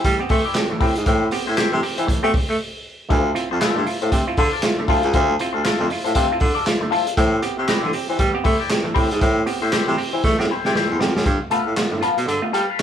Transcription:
0.04 A2 E3 G3, muted clean electric guitar stroke, kick, closed hi-hat
0.19 B3 C4 G4, muted clean electric guitar stroke
0.29 A3 C4 E4 G4 C5, kick, open hi-hat
0.45 E4 G4 D5
0.55 C4 G4, muted clean electric guitar stroke, snare, clap, closed hi-hat
0.71 A2 E3, muted clean electric guitar stroke
0.80 A2 C4 E4 G4 C5, kick, open hi-hat
0.95 G#2, muted clean electric guitar stroke, closed hi-hat
1.06 A2 E3 E4 G4 C5, kick, closed hi-hat
1.22 C4 G4
1.31 B3 C4 G4, muted clean electric guitar stroke, open hi-hat
1.47 A2 E4 G4 C5
1.56 C4 E4 G4 C5, snare, clap, closed hi-hat
1.72 A2 C3 E3
1.83 C4 G4, open hi-hat
1.98 E3 E4 G4 C5, closed hi-hat
2.07 A2 E3, kick, closed hi-hat
2.23 A3 B3 C4 E4 G4 C5
2.32 C4 G4, muted clean electric guitar stroke, kick, open hi-hat
2.49 A3, muted clean electric guitar stroke
3.09 D2 D3 A3 F4 A4 C5, kick, closed hi-hat
3.24 E4 F4
3.34 C4 E4 F4, muted clean electric guitar stroke, closed hi-hat
3.51 F2 F4 A4 C5
3.60 E4 F4 A4 C5, snare, clap, closed hi-hat
3.75 G2 D3 A3
3.86 E4 F4, muted clean electric guitar stroke, open hi-hat
4.02 A2 F4 A4 C5, closed hi-hat
4.11 C3 D3 A3, muted clean electric guitar stroke, kick, closed hi-hat
4.27 C4 E4 F4, muted clean electric guitar stroke
4.37 D3 E4 F4 A4 C5, kick, open hi-hat
4.52 F4 A4 D5
4.62 E4 F4, muted clean electric guitar stroke, snare, clap, closed hi-hat
4.79 D3 A3, muted clean electric guitar stroke
4.88 D2 E4 F4 A4 C5, kick, open hi-hat
5.03 C#2, muted clean electric guitar stroke, closed hi-hat
5.13 D2 D3 A3 F4 A4 C5, kick, closed hi-hat
5.31 E4 F4
5.39 C4 E4 F4, muted clean electric guitar stroke, closed hi-hat
5.53 D2 F4 A4 C5
5.64 E4 F4 A4 C5, snare, clap, closed hi-hat
5.80 F2 D3 A3
5.88 E4 F4, muted clean electric guitar stroke, open hi-hat
6.04 A2 F4 A4 C5, closed hi-hat
6.15 C3 D3 A3 F4 A4 C5, kick, closed hi-hat
6.32 C4 E4 F4
6.40 D3 E4 F4, muted clean electric guitar stroke, kick, open hi-hat
6.55 F4 A4 D5
6.65 E4 F4, muted clean electric guitar stroke, snare, clap, closed hi-hat
6.81 D3 A3, muted clean electric guitar stroke
6.91 E4 F4 A4 C5, open hi-hat
7.07 muted clean electric guitar stroke, closed hi-hat
7.17 A2 E3 E4 G4 C5, kick, closed hi-hat
7.33 C4 G4
7.42 B3 C4 G4, muted clean electric guitar stroke, closed hi-hat
7.58 C3 E4 G4 C5
7.68 C4 E4 G4 C5, snare, clap, closed hi-hat
7.83 A2 D3 E3
7.93 C4 G4, muted clean electric guitar stroke, open hi-hat
8.09 E3 E4 G4 C5
8.19 A2 E3 G3, muted clean electric guitar stroke, kick, closed hi-hat
8.34 B3 C4 G4, muted clean electric guitar stroke
8.44 A3 C4 E4 G4 C5, kick, open hi-hat
8.60 E4 G4 D5
8.69 C4 G4, snare, clap, closed hi-hat
8.83 A2 E3, muted clean electric guitar stroke
8.94 A2 C4 E4 G4 C5, kick, open hi-hat
9.11 G#2, muted clean electric guitar stroke, closed hi-hat
9.21 A2 E3 E4 G4 C5, kick, closed hi-hat
9.35 C4 G4
9.46 B3 C4 G4, muted clean electric guitar stroke, open hi-hat
9.62 A2 E4 G4 C5
9.72 C4 E4 G4 C5, snare, clap, closed hi-hat
9.88 A2 C3 E3
9.97 C4 G4, muted clean electric guitar stroke, open hi-hat
10.13 E3 E4 G4 C5
10.24 A2 E3 A3, kick, snare
10.39 A2 B3 C4 G4, muted clean electric guitar stroke, snare
10.49 C4 E4 G4 C5
10.65 C3 E4 G4 D5, snare
10.75 A2 E3 E4 G4 C5, snare
10.90 E2
10.99 F2 B3 C4 G4, muted clean electric guitar stroke, snare
11.15 F#2 C4 G4, muted clean electric guitar stroke, snare
11.25 G2 D3, kick, closed hi-hat
11.40 B3 F4
11.50 A3 B3 F4 A4 B4 F5, closed hi-hat
11.66 A2
11.76 A2 B3 F4, muted clean electric guitar stroke, snare, clap, closed hi-hat
11.91 G2 A2 D3, muted clean electric guitar stroke
12.01 B3 F4 A4 B4 F5, closed hi-hat
12.17 B2, muted clean electric guitar stroke, closed hi-hat
12.26 G2 D3, muted clean electric guitar stroke, closed hi-hat
12.42 A3 B3 F4, muted clean electric guitar stroke
12.52 G3 B3 F4 A4 B4 F5, closed hi-hat
12.70 A4 B4 F5
12.79 G2, closed hi-hat

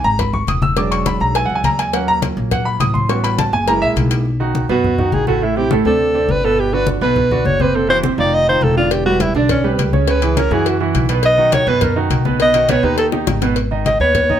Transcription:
0.04 G#1 A#5, high conga
0.19 B5, cowbell, high conga, low conga
0.33 C#6, high conga, low conga
0.47 E1 D#6, cowbell, high conga
0.62 E6, high conga
0.76 F#3 G#3 D4 D6, cowbell, high conga
0.91 C#6, cowbell, high conga
1.06 B5, cowbell, high conga
1.20 B1 A#5, high conga
1.35 G#5, cowbell, high conga
1.46 C#2 F#5, high conga
1.55 G#5
1.64 D#2 A#5, cowbell, high conga
1.78 G#5, cowbell, high conga
1.93 F#3 A#3 C#4 F#5, cowbell, high conga
2.08 A#5, high conga
2.22 cowbell, high conga
2.37 A#1, high conga
2.51 F#5, cowbell, high conga, low conga
2.65 B5, high conga
2.80 A1 D#6, cowbell, high conga
2.94 C6, high conga
3.09 G3 B3 C#4 F#4 C#6, cowbell, high conga
3.24 B5, cowbell, high conga
3.38 A5, cowbell, high conga
3.53 F#1 G#5, high conga
3.67 G#3 A#3 E4 A#5, cowbell, high conga
3.82 A#1 E5, high conga
3.96 B1, cowbell, high conga
4.11 cowbell
4.26 high conga
4.40 D#3 D#4 F#4, high conga
4.55 high conga
4.69 F#2 B2 B3 F#4 B4, high conga
4.84 high conga, low conga
4.99 D#3 D#4 F#4, high conga, low conga
5.12 A1 G#4, high conga
5.27 A2 A3 F#4 A4, high conga
5.42 A2 A3 E4 A4, high conga
5.56 C3 C4 E4 G4, high conga
5.71 A2 A3 A4, high conga
5.85 D2 C3 C4 D4 A4, high conga
6.00 high conga
6.14 C3 C4 D4, high conga
6.29 G1 B4, high conga
6.44 B2 B3 A4 B4, high conga
6.58 G4, high conga
6.73 D3 D4 F#4 B4, high conga
6.87 high conga
7.01 B1 B2 B3 B4, high conga
7.16 high conga, low conga
7.31 D3 D4 F#4, high conga, low conga
7.45 F#1 C#5, high conga
7.60 C3 C4 B4 C5, high conga
7.75 C3 C4 A4 C5, high conga
7.88 E3 E4 F#4 C5, high conga
8.03 C3 C4 C5, high conga
8.18 F1 D#3 D#4 F4 D5, high conga
8.33 D#5, high conga
8.47 D#3 D#4 F4 C5, high conga
8.61 E1 A4, high conga
8.76 D3 D4 F4 D5, high conga
8.91 G4, cowbell, high conga
9.06 G3 F#4 G4 B4, high conga
9.20 E4, cowbell, high conga
9.35 B1 D3 D4 D5, high conga
9.49 C#4, cowbell, high conga, low conga
9.64 G3 G4 B4, high conga
9.78 C#2, cowbell, high conga
9.93 C#3 C#4 C#5, high conga
10.08 C#3 C#4 B4 C#5, cowbell, high conga
10.21 E3 E4 G#4, cowbell, high conga
10.36 C#3 C#4 A#4 C#5, cowbell, high conga
10.51 F#2 E3 E4 F#4 G#4, high conga
10.66 F#4, cowbell, high conga
10.80 E3 E4 F#4, high conga
10.94 B1, cowbell, high conga
11.09 B2 B3 B4, cowbell
11.23 D#5, cowbell, high conga
11.38 D#3 D#4 F#4, high conga
11.52 C#5, cowbell, high conga
11.67 F#2 B2 B3 B4, high conga
11.81 A#4, cowbell, high conga, low conga
11.96 D#3 D#4 F#4, high conga
12.10 B1, cowbell, high conga
12.25 B2 B3 B4, high conga
12.40 B2 B3 B4 D#5, cowbell, high conga
12.54 D#3 D#4 F#4, cowbell, high conga
12.69 B2 B3 B4 C#5, cowbell, high conga
12.83 D#2 D#3 D#4 G4 B4, high conga
12.98 A4, cowbell, high conga
13.12 D#3 D#4 G4, high bongo, high conga
13.27 G#1, cowbell, high bongo, high conga
13.42 B2 B3 B4, cowbell, low bongo
13.56 cowbell, high conga
13.71 D#3 D#4 D#5, high conga
13.86 D#5, cowbell, high conga
14.00 D#2 B3 B4 C#5 B5, high conga
14.15 cowbell, high conga, low conga
14.29 D#3 D#4 D#5, high conga, low conga

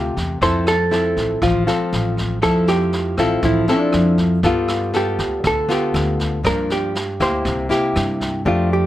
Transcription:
Already playing: D2 C3 A3 F4 G4
0.17 E2, kick, snare
0.42 F2 F3 C4 E4 A4 C5, kick, snare
0.67 A4, cross-stick, snare
0.91 C4 E4 A4, snare
1.17 A1, kick, snare
1.42 A1 F3 F4, kick, cross-stick, snare
1.67 C4 F4 A4, snare
1.93 A1, snare
2.17 kick, snare
2.42 F2 F3 C4 E4 A4, kick, cross-stick, snare
2.67 G4, snare
2.92 snare
3.17 A1 C4 E4 F4 A4, kick, cross-stick, snare
3.42 A1 F3 E4, kick, snare
3.68 C4 D4 E4 A4, snare
3.92 F2, cross-stick, snare
4.18 kick, snare
4.43 G2 G3 B3 F4 A4, kick, snare
4.68 cross-stick, snare
4.93 B3 F4 G4 A4, snare
5.19 D2, kick, snare
5.44 D2 D3 A4, kick, cross-stick, snare
5.69 B3 F4 G4 A4, snare
5.94 D2, snare
6.19 kick, snare
6.43 G2 F3 A#3 D4 A#4, kick, cross-stick, snare
6.70 G4, snare
6.95 snare
7.20 D2 A#3 E4 G4 C5, kick, cross-stick, snare
7.45 C2 C3, kick, snare
7.69 A#3 E4 G4, snare
7.95 G2, cross-stick, snare
8.21 kick, snare
8.45 F2 F3 A3 D4 F4 G4
8.73 G4

